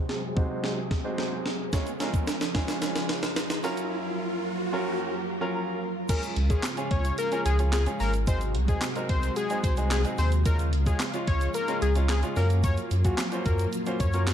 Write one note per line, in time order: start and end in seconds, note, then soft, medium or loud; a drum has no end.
0.00 1.71 C3 medium
0.00 1.71 F#3 medium
0.00 1.71 C4 medium
0.00 3.60 G#4 medium
0.00 riser medium
0.09 snare medium
0.36 0.77 C3 medium
0.36 0.77 G#3 medium
0.36 0.77 D#4 medium
0.36 0.77 F#4 medium
0.36 0.77 C5 medium
0.36 kick medium
0.64 snare medium
0.91 kick medium
0.91 snare medium
1.04 1.45 C3 medium
1.04 1.45 G#3 medium
1.04 1.45 D#4 medium
1.04 1.45 F#4 medium
1.04 1.45 C5 medium
1.18 snare medium
1.46 snare medium
1.73 3.62 F3 medium
1.73 1.89 G#3 medium
1.73 1.89 C#4 medium
1.73 3.62 C#4 medium
1.73 1.89 F4 medium
1.73 1.89 C#5 medium
1.73 kick loud
1.73 snare medium
1.73 closed hi-hat medium
1.73 shaker medium
1.86 closed hi-hat soft
1.86 shaker soft
2.00 2.32 G#3 medium
2.00 2.33 C#4 medium
2.00 2.33 F4 medium
2.00 2.33 A#4 medium
2.00 snare loud
2.00 closed hi-hat medium
2.00 shaker soft
2.14 kick medium
2.14 closed hi-hat soft
2.14 shaker medium
2.27 snare loud
2.27 closed hi-hat medium
2.27 shaker medium
2.41 snare loud
2.41 closed hi-hat medium
2.41 shaker soft
2.54 3.20 G#3 medium
2.54 3.20 C#4 medium
2.54 3.20 F4 medium
2.54 3.20 G#4 medium
2.54 kick medium
2.54 snare loud
2.54 closed hi-hat medium
2.68 snare loud
2.68 closed hi-hat medium
2.68 shaker medium
2.82 snare loud
2.82 closed hi-hat medium
2.82 shaker medium
2.96 snare loud
2.96 closed hi-hat medium
2.96 shaker medium
3.09 snare loud
3.09 closed hi-hat medium
3.23 snare loud
3.23 closed hi-hat medium
3.23 shaker soft
3.36 snare loud
3.36 closed hi-hat medium
3.36 shaker medium
3.50 snare loud
3.50 closed hi-hat medium
3.50 shaker medium
3.63 4.51 F#3 loud
3.63 6.07 F#3 medium
3.63 4.51 C#4 medium
3.63 6.07 F4 medium
3.63 4.51 F4 medium
3.63 6.07 A#4 medium
3.63 4.51 A#4 loud
3.63 open hi-hat medium
3.63 shaker medium
3.77 closed hi-hat medium
3.77 shaker medium
4.73 5.13 F#3 medium
4.73 5.13 C#4 medium
4.73 5.14 F4 medium
4.73 5.14 A#4 loud
5.41 5.82 F#3 medium
5.41 5.82 C#4 medium
5.41 5.82 F4 medium
5.41 5.82 A#4 loud
5.55 6.05 A#5 medium
6.09 8.25 C#3 medium
6.09 12.33 G#3 medium
6.09 6.33 C#4 medium
6.09 6.34 F4 medium
6.09 8.25 F4 medium
6.09 6.34 G#4 medium
6.09 6.20 A#4 loud
6.09 kick loud
6.09 closed hi-hat medium
6.09 crash loud
6.09 shaker medium
6.23 closed hi-hat soft
6.23 shaker soft
6.36 6.57 C#2 loud
6.36 closed hi-hat medium
6.50 6.66 C#4 medium
6.50 6.66 F4 medium
6.50 6.61 G#4 medium
6.50 6.67 G#4 medium
6.50 kick medium
6.50 closed hi-hat medium
6.50 shaker medium
6.63 snare loud
6.63 clap loud
6.63 closed hi-hat medium
6.63 shaker medium
6.77 7.10 C#4 medium
6.77 7.10 F4 medium
6.77 7.10 G#4 medium
6.77 closed hi-hat medium
6.77 shaker medium
6.91 7.12 C#2 medium
6.91 7.14 C#5 medium
6.91 kick loud
6.91 closed hi-hat medium
7.04 closed hi-hat medium
7.04 shaker medium
7.18 7.41 A#4 loud
7.18 closed hi-hat loud
7.18 shaker medium
7.32 7.48 C#4 medium
7.32 7.48 F4 medium
7.32 7.48 G#4 medium
7.32 closed hi-hat medium
7.32 shaker medium
7.45 7.87 C#2 loud
7.45 7.57 G#4 medium
7.45 closed hi-hat medium
7.45 shaker medium
7.59 7.75 C#4 medium
7.59 7.75 F4 medium
7.59 7.76 G#4 medium
7.59 closed hi-hat medium
7.59 shaker soft
7.72 7.84 G#4 medium
7.72 snare loud
7.72 clap loud
7.72 closed hi-hat medium
7.72 shaker medium
7.86 8.11 C#4 medium
7.86 8.11 F4 medium
7.86 8.11 G#4 medium
7.86 closed hi-hat medium
7.86 shaker soft
8.00 8.56 G#1 loud
8.00 8.11 A#4 medium
8.00 open hi-hat medium
8.00 shaker medium
8.14 closed hi-hat medium
8.14 shaker medium
8.27 10.43 C3 medium
8.27 8.52 F#3 medium
8.27 8.52 G#3 medium
8.27 8.52 C4 medium
8.27 8.52 D#4 medium
8.27 10.43 F#4 medium
8.27 8.52 G#4 medium
8.27 8.39 C5 medium
8.27 kick loud
8.27 closed hi-hat loud
8.27 shaker medium
8.41 closed hi-hat soft
8.41 shaker soft
8.55 8.75 C2 loud
8.55 closed hi-hat medium
8.68 8.84 F#3 medium
8.68 8.85 G#3 medium
8.68 8.85 C4 medium
8.68 8.85 D#4 medium
8.68 8.80 G#4 medium
8.68 8.85 G#4 medium
8.68 kick loud
8.68 closed hi-hat medium
8.68 shaker medium
8.81 snare loud
8.81 clap loud
8.81 closed hi-hat medium
8.81 shaker medium
8.95 9.28 F#3 medium
8.95 9.28 G#3 medium
8.95 9.28 C4 medium
8.95 9.28 D#4 medium
8.95 9.28 A#4 medium
8.95 closed hi-hat medium
8.95 shaker medium
9.09 9.30 C2 medium
9.09 9.32 C5 medium
9.09 kick loud
9.09 closed hi-hat medium
9.23 closed hi-hat medium
9.23 shaker medium
9.36 9.59 G#4 medium
9.36 closed hi-hat medium
9.36 shaker medium
9.50 9.66 F#3 medium
9.50 9.66 G#3 medium
9.50 9.66 C4 medium
9.50 9.66 D#4 medium
9.50 9.67 G#4 medium
9.50 closed hi-hat medium
9.50 shaker medium
9.64 10.05 C2 loud
9.64 9.75 C5 medium
9.64 kick medium
9.64 closed hi-hat medium
9.64 shaker medium
9.77 9.94 F#3 medium
9.77 9.94 G#3 medium
9.77 9.94 C4 medium
9.77 9.94 D#4 medium
9.77 9.94 G#4 medium
9.77 closed hi-hat medium
9.77 shaker soft
9.91 10.02 G#4 medium
9.91 snare loud
9.91 clap loud
9.91 closed hi-hat medium
9.91 shaker medium
10.04 10.29 F#3 medium
10.04 10.29 G#3 medium
10.04 10.29 C4 medium
10.04 10.29 D#4 medium
10.04 10.29 G#4 medium
10.04 closed hi-hat medium
10.04 shaker medium
10.18 10.74 D#2 medium
10.18 10.30 C5 medium
10.18 open hi-hat medium
10.18 shaker medium
10.32 closed hi-hat medium
10.32 shaker soft
10.45 12.34 C#3 medium
10.45 10.70 G#3 medium
10.45 10.70 C#4 medium
10.45 12.35 F4 medium
10.45 10.70 F4 medium
10.45 10.57 A#4 loud
10.45 kick loud
10.45 closed hi-hat medium
10.45 shaker medium
10.59 closed hi-hat soft
10.59 shaker soft
10.73 10.94 C#2 loud
10.73 closed hi-hat medium
10.86 11.03 G#3 medium
10.86 11.03 C#4 medium
10.86 11.03 F4 medium
10.86 10.98 G#4 medium
10.86 kick medium
10.86 closed hi-hat medium
10.86 shaker medium
11.00 snare loud
11.00 clap loud
11.00 closed hi-hat loud
11.00 shaker medium
11.14 11.46 G#3 medium
11.14 11.46 C#4 medium
11.14 11.46 F4 medium
11.14 closed hi-hat medium
11.14 shaker medium
11.27 11.48 C#2 loud
11.27 11.50 C#5 medium
11.27 kick loud
11.27 closed hi-hat medium
11.41 closed hi-hat medium
11.41 shaker medium
11.54 11.77 A#4 loud
11.54 closed hi-hat medium
11.54 shaker medium
11.68 11.84 G#3 medium
11.68 11.85 C#4 medium
11.68 11.85 F4 medium
11.68 closed hi-hat medium
11.68 shaker medium
11.82 12.24 C#2 medium
11.82 11.93 G#4 medium
11.82 closed hi-hat medium
11.82 shaker medium
11.95 12.12 G#3 medium
11.95 12.12 C#4 medium
11.95 12.12 F4 medium
11.95 closed hi-hat medium
11.95 shaker medium
12.09 12.21 G#4 medium
12.09 snare loud
12.09 clap loud
12.09 closed hi-hat medium
12.09 shaker medium
12.23 12.36 G#3 medium
12.23 12.35 C#4 medium
12.23 12.35 F4 medium
12.23 closed hi-hat medium
12.23 shaker medium
12.36 12.78 F#2 medium
12.36 12.91 F#3 medium
12.36 14.34 F#3 medium
12.36 12.91 A#3 medium
12.36 14.34 A#3 medium
12.36 12.91 C#4 medium
12.36 14.34 F4 medium
12.36 12.91 F4 medium
12.36 12.48 A#4 medium
12.36 12.91 A#4 loud
12.36 open hi-hat medium
12.36 shaker medium
12.50 closed hi-hat medium
12.50 shaker medium
12.64 12.75 C#5 loud
12.64 kick loud
12.64 closed hi-hat medium
12.64 shaker medium
12.77 closed hi-hat soft
12.77 shaker soft
12.91 13.12 F#2 loud
12.91 closed hi-hat medium
12.91 shaker medium
13.05 13.21 F#3 medium
13.05 13.21 A#3 medium
13.05 13.21 C#4 medium
13.05 13.21 F4 medium
13.05 13.16 F#4 medium
13.05 13.21 G#4 medium
13.05 kick medium
13.05 closed hi-hat medium
13.05 shaker medium
13.18 snare loud
13.18 clap loud
13.18 closed hi-hat loud
13.18 shaker medium
13.32 13.64 F#3 medium
13.32 13.64 A#3 medium
13.32 13.65 C#4 medium
13.32 13.65 F4 medium
13.32 13.65 C5 medium
13.32 closed hi-hat medium
13.32 shaker medium
13.45 13.67 F#2 medium
13.45 13.68 A#4 medium
13.45 kick medium
13.45 closed hi-hat medium
13.45 shaker medium
13.59 closed hi-hat medium
13.59 shaker medium
13.73 closed hi-hat medium
13.73 shaker medium
13.86 14.03 F#3 medium
13.86 14.03 A#3 medium
13.86 14.03 C#4 medium
13.86 14.03 F4 medium
13.86 14.03 C5 medium
13.86 closed hi-hat medium
13.86 shaker medium
14.00 14.34 F#2 loud
14.00 14.23 C#5 medium
14.00 kick medium
14.00 closed hi-hat medium
14.00 shaker medium
14.13 14.30 F#3 medium
14.13 14.30 A#3 medium
14.13 14.30 C#4 medium
14.13 14.30 F4 medium
14.13 14.30 A#4 medium
14.13 closed hi-hat medium
14.13 shaker medium
14.27 snare loud
14.27 clap loud
14.27 closed hi-hat medium
14.27 shaker medium